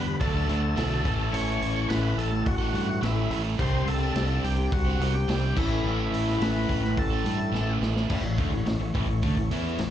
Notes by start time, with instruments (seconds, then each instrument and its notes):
Already playing: fingered electric bass E2, overdriven electric guitar G2 D3 G3 B3 D4 G4, tonewheel organ B3 D4 G4 B4 D5, lead electric guitar B5
0.06 twelve-string acoustic guitar D4 G4 B4, muted overdriven electric guitar stroke
0.19 fingered electric bass D2, overdriven electric guitar D3 F#3 A3 D4, tonewheel organ A3 D4 F#4 A4 D5, twelve-string acoustic guitar A4, lead electric guitar A5, kick, open hi-hat
0.23 overdriven electric guitar F#4
0.33 overdriven electric guitar A3 D4 F#4, twelve-string acoustic guitar A4
0.48 fingered electric bass D2, overdriven electric guitar F#3 A3 D4 F#4, twelve-string acoustic guitar A4, open hi-hat
0.63 muted overdriven electric guitar stroke
0.76 fingered electric bass B1, overdriven electric guitar D3 F#3 A3 D4 F#4, twelve-string acoustic guitar A4, snare, open hi-hat
0.91 overdriven electric guitar A3 D4 F#4
1.04 fingered electric bass A1, overdriven electric guitar A2 E3 A3 C#4 A4, tonewheel organ A3 C#4 E4 C#5, twelve-string acoustic guitar E4, kick, open hi-hat
1.32 fingered electric bass A1, overdriven electric guitar A2 E3 A3 C#4 A4, twelve-string acoustic guitar E4, tonewheel organ C#5, lead electric guitar C#6, open hi-hat
1.60 fingered electric bass A1, twelve-string acoustic guitar A3 C#4 E4 A4, open hi-hat
1.74 overdriven electric guitar A3 C#4 A4
1.88 fingered electric bass A1, overdriven electric guitar A2 E3 A3 C#4 A4, twelve-string acoustic guitar E4, tonewheel organ B4, lead electric guitar B5, snare, open hi-hat
2.17 fingered electric bass A1, overdriven electric guitar E3 A3 C#4 A4, twelve-string acoustic guitar E4, tonewheel organ A4, lead electric guitar A5, open hi-hat
2.31 twelve-string acoustic guitar A3 C#4 E4 A4, muted overdriven electric guitar stroke
2.45 fingered electric bass A1, tonewheel organ F#4, lead electric guitar F#5, kick, open hi-hat
2.59 overdriven electric guitar A3 C#4 A4, twelve-string acoustic guitar E4
2.73 fingered electric bass G2, overdriven electric guitar E3 A3 C#4 A4, twelve-string acoustic guitar E4, open hi-hat
2.89 muted overdriven electric guitar stroke
3.01 fingered electric bass A1, overdriven electric guitar A2 E3 A3 C#4 A4, twelve-string acoustic guitar E4, tonewheel organ E4, lead electric guitar E5, snare, open hi-hat
3.16 overdriven electric guitar A3 C#4 A4
3.30 fingered electric bass A1, overdriven electric guitar E3 A3 C#4 A4, twelve-string acoustic guitar E4, open hi-hat
3.57 fingered electric bass C2, overdriven electric guitar C3 G3 C4 D4 G4, tonewheel organ G3 C4 D4 C5, twelve-string acoustic guitar C5, lead electric guitar C6, kick, open hi-hat
3.85 fingered electric bass C2, twelve-string acoustic guitar C4 D4 G4 C5, tonewheel organ A4, lead electric guitar A5, open hi-hat
4.01 overdriven electric guitar C4 D4 G4
4.14 fingered electric bass C2, overdriven electric guitar C3 G3 C4 D4 G4, twelve-string acoustic guitar C5, snare, open hi-hat
4.42 fingered electric bass C2, overdriven electric guitar G3 C4 D4 G4, tonewheel organ G4, twelve-string acoustic guitar C5, lead electric guitar G5, open hi-hat
4.57 twelve-string acoustic guitar D4 G4 C5, muted overdriven electric guitar stroke
4.72 fingered electric bass C2, tonewheel organ F#4, lead electric guitar F#5, kick, open hi-hat
4.85 overdriven electric guitar C4 D4 G4, twelve-string acoustic guitar C5
4.99 fingered electric bass C2, overdriven electric guitar G3 C4 D4 G4, open hi-hat
5.03 twelve-string acoustic guitar C5
5.13 tonewheel organ G4, lead electric guitar G5, muted overdriven electric guitar stroke
5.28 fingered electric bass C2, overdriven electric guitar C3 G3 C4 D4 G4, twelve-string acoustic guitar C5, snare, open hi-hat
5.41 overdriven electric guitar C4 D4 G4
5.55 fingered electric bass A1, overdriven electric guitar A2 E3 A3 C#4 A4, tonewheel organ A3 C#4 E4 C#5, twelve-string acoustic guitar E4, lead electric guitar E5, kick, crash
5.84 fingered electric bass A1, overdriven electric guitar A2 E3 A3 C#4 A4, twelve-string acoustic guitar E4
6.12 fingered electric bass A1, twelve-string acoustic guitar A3 C#4 E4 A4, open hi-hat
6.26 overdriven electric guitar A3 C#4 A4, snare
6.40 fingered electric bass A1, overdriven electric guitar A2 E3 A3 C#4 A4, twelve-string acoustic guitar E4, tonewheel organ B4, lead electric guitar B5, snare, open hi-hat
6.68 fingered electric bass A1, overdriven electric guitar E3 A3 C#4 A4, twelve-string acoustic guitar E4, kick, open hi-hat
6.83 twelve-string acoustic guitar A3 C#4 E4 A4, muted overdriven electric guitar stroke, snare
6.97 fingered electric bass A1, tonewheel organ A4, lead electric guitar A5, kick, open hi-hat
7.10 overdriven electric guitar A3 C#4 A4, twelve-string acoustic guitar E4
7.23 fingered electric bass G2, overdriven electric guitar E3 A3 C#4 A4, open hi-hat
7.28 twelve-string acoustic guitar E4
7.39 muted overdriven electric guitar stroke
7.52 fingered electric bass A1, overdriven electric guitar A2 E3 A3 C#4 A4, twelve-string acoustic guitar E4, snare
7.67 overdriven electric guitar A3 C#4 A4
7.80 fingered electric bass A1, overdriven electric guitar E3 A3 C#4 A4, tonewheel organ A3 B3, twelve-string acoustic guitar E4, snare
7.85 tonewheel organ C4 D4
7.92 tonewheel organ E4 F4
7.96 tonewheel organ G4 A4, snare
8.02 tonewheel organ B4 C5
8.08 fingered electric bass A1, overdriven electric guitar A2 E3, tonewheel organ A3 C#4 E4 C#5 D5, kick, crash
8.23 fingered electric bass A1, overdriven electric guitar A2 E3
8.38 fingered electric bass D2, overdriven electric guitar D3 A3, kick, open hi-hat
8.51 fingered electric bass A1, overdriven electric guitar A2 E3
8.65 fingered electric bass A1, overdriven electric guitar A2 E3, snare, open hi-hat
8.80 fingered electric bass A1, overdriven electric guitar A2 E3
8.94 fingered electric bass A1, overdriven electric guitar A2 E3, kick, open hi-hat
9.08 fingered electric bass A1, overdriven electric guitar A2 E3
9.22 fingered electric bass D2, overdriven electric guitar D3 A3, kick, open hi-hat
9.36 fingered electric bass A1, overdriven electric guitar A2 E3
9.50 fingered electric bass E2, overdriven electric guitar E3 B3 E4, open hi-hat
9.78 fingered electric bass A1, overdriven electric guitar A2 E3, snare, open hi-hat